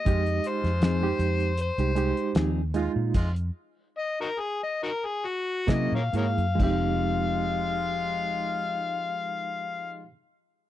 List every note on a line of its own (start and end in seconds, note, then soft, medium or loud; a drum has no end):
0.00 0.49 D#5 loud
0.05 0.39 F2 loud
0.05 0.68 G#3 medium
0.05 0.22 G#3 medium
0.05 0.22 D#4 medium
0.05 0.69 D#4 medium
0.05 0.22 F4 medium
0.05 0.70 G4 medium
0.05 kick loud
0.05 closed hi-hat medium
0.26 closed hi-hat soft
0.44 1.20 G#3 medium
0.44 1.20 D#4 medium
0.44 1.20 F4 medium
0.44 1.56 C5 medium
0.44 closed hi-hat medium
0.64 1.12 F2 medium
0.64 snare soft
0.64 closed hi-hat soft
0.81 1.05 F3 medium
0.81 1.05 C4 medium
0.81 1.06 D#4 medium
0.81 1.06 G#4 medium
0.81 snare loud
0.81 closed hi-hat medium
1.01 1.51 G#3 medium
1.01 1.51 D#4 medium
1.01 1.52 G4 loud
1.19 1.70 F2 medium
1.19 closed hi-hat medium
1.40 closed hi-hat soft
1.57 2.35 C5 loud
1.57 closed hi-hat medium
1.78 2.11 C2 loud
1.78 1.90 G#3 medium
1.78 1.91 D#4 medium
1.78 1.91 G4 medium
1.78 closed hi-hat soft
1.96 2.48 G#3 medium
1.96 2.48 D#4 medium
1.96 2.49 G4 medium
1.96 closed hi-hat medium
2.17 closed hi-hat soft
2.35 2.87 D#2 medium
2.35 2.60 F3 medium
2.35 2.60 C4 medium
2.35 2.60 D#4 medium
2.35 2.61 G#4 medium
2.35 snare loud
2.35 closed hi-hat medium
2.74 3.14 G#3 medium
2.74 2.91 G#3 medium
2.74 3.15 D#4 medium
2.74 2.91 D#4 medium
2.74 2.91 F4 medium
2.74 3.15 F4 medium
2.74 closed hi-hat medium
2.96 3.12 A#2 medium
3.14 3.49 F2 medium
3.14 3.30 G#3 medium
3.14 3.31 D#4 medium
3.14 3.31 F4 medium
3.14 kick loud
3.14 closed hi-hat medium
3.14 crash medium
3.36 closed hi-hat soft
3.98 4.18 D#5 loud
4.21 4.28 D#4 medium
4.21 4.27 F#4 medium
4.21 4.41 A#4 medium
4.40 4.60 G#4 medium
4.63 4.80 D#5 medium
4.83 4.90 D#4 medium
4.83 4.90 F#4 medium
4.83 5.07 A#4 medium
5.06 5.28 G#4 medium
5.27 5.73 F#4 medium
5.67 5.90 C3 medium
5.67 5.96 F#3 medium
5.67 5.98 A#3 medium
5.67 6.05 A#3 medium
5.67 5.96 C#4 medium
5.67 5.99 E4 medium
5.67 6.05 E4 medium
5.67 5.97 E4 medium
5.67 6.05 F#4 medium
5.67 5.99 G#4 medium
5.67 5.97 A#4 medium
5.67 kick medium
5.67 snare loud
5.67 closed hi-hat medium
5.72 5.92 D#5 medium
5.92 6.11 A#2 medium
5.92 6.03 A#4 medium
5.92 6.01 C#5 medium
5.92 6.13 F5 medium
6.13 6.35 G#2 medium
6.13 6.29 A#3 medium
6.13 6.44 A#3 medium
6.13 6.29 E4 medium
6.13 6.45 E4 medium
6.13 6.29 F#4 medium
6.13 6.45 G#4 medium
6.13 closed hi-hat medium
6.17 6.24 A#4 medium
6.17 6.26 C#5 medium
6.17 6.60 F5 medium
6.38 6.57 F#2 medium
6.38 closed hi-hat soft
6.55 10.05 F3 medium
6.55 10.01 G#3 medium
6.59 10.05 F1 medium
6.59 10.05 G#3 medium
6.59 10.11 C4 medium
6.59 10.05 D#4 medium
6.59 10.06 D#4 medium
6.59 10.05 F4 medium
6.59 10.09 G4 medium
6.59 10.09 F5 loud
6.59 kick loud
6.59 crash medium
6.67 10.17 D#4 medium